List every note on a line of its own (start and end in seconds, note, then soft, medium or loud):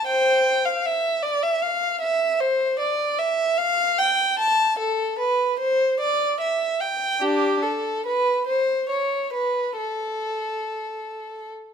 0.07 0.61 C5 medium
0.07 0.64 G5 medium
0.65 0.84 F5 medium
0.85 1.24 E5 medium
1.23 1.42 D5 medium
1.43 1.62 E5 medium
1.62 2.01 F5 medium
2.01 2.39 E5 medium
2.40 2.79 C5 medium
2.80 3.18 D5 medium
3.19 3.58 E5 medium
3.58 3.98 F5 medium
3.98 4.39 G5 medium
4.39 4.78 A5 medium
4.79 5.18 A4 medium
5.19 5.59 B4 medium
5.59 5.99 C5 medium
6.00 6.40 D5 medium
6.40 6.80 E5 medium
6.81 7.22 G5 medium
7.21 7.60 D4 medium
7.21 7.63 G4 medium
7.63 8.05 A4 medium
8.06 8.46 B4 medium
8.47 8.88 C5 medium
8.89 9.32 C#5 medium
9.33 9.76 B4 medium
9.77 11.49 A4 medium